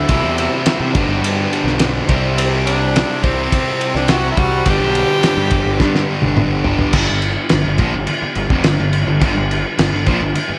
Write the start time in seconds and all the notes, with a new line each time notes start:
Already playing: E4
0.08 C2 C3 E3 G3 C4 E4 G4, kick, ride
0.12 G4
0.23 E2
0.38 ride
0.66 snare, ride
0.80 C3
0.92 G1 G2 D3 G3 B3 C4 D#4 G#4, kick, ride
0.97 D4 G4
1.07 G1
1.13 B3 D4 G4
1.22 G2, ride
1.53 ride
1.64 B1, snare
1.79 snare, ride
2.09 C2 C3 G3 C4 E4 G4, kick, ride
2.37 C4, ride
2.66 D4, ride
2.96 snare, ride
3.23 C2 C3 G3 C4 E4 G4, kick, ride
3.52 kick, ride
3.81 ride
3.95 C2 D4, snare
4.08 C3 G3 C4 E4 F#4 G4, snare, ride
4.31 E4
4.37 C2 F#4, kick, ride
4.65 G1 G2 D3 G3 B3 D4 G4, kick, ride
4.70 G4
4.79 B1
4.95 ride
5.23 snare, ride
5.37 G2
5.51 G1, kick, ride
5.66 G1
5.79 G2 D3 G3 B3 D4 G4, kick, snare
5.95 snare
6.22 G1, high tom
6.37 mid tom
6.64 G2 D3 G3 B3 D4 G4, floor tom
6.79 floor tom
6.93 G1 G2 D3 B3 D4 G4, kick, crash
7.09 G1 G2 D3
7.22 crash
7.49 G1 G2 D3, snare, crash
7.66 G1 G2 D3
7.78 A#1 A#2, kick, crash
7.82 F3
7.95 G1 G2 D3
8.07 muted distorted electric guitar stroke, muted overdriven electric guitar stroke, muted picked electric bass stroke, crash
8.22 muted distorted electric guitar stroke, muted picked electric bass stroke, muted overdriven electric guitar stroke
8.35 G1 G2 D3, crash
8.50 F1 F2 C3, kick
8.64 G1 G2 D3, snare, crash
8.80 G1 G2 D3
8.93 crash
9.07 G1 G2 D3
9.21 G1 G2 D3 D4 G4 B4, kick, crash
9.34 G1 G2 D3
9.38 D3
9.51 crash
9.79 G1 G2 D3, snare, crash
9.92 G1 G2 D3
10.06 A#1 A#2 F3, kick, crash
10.21 G1 G2 D3
10.35 muted picked electric bass stroke, muted distorted electric guitar stroke, muted overdriven electric guitar stroke, crash
10.49 muted distorted electric guitar stroke, muted picked electric bass stroke, muted overdriven electric guitar stroke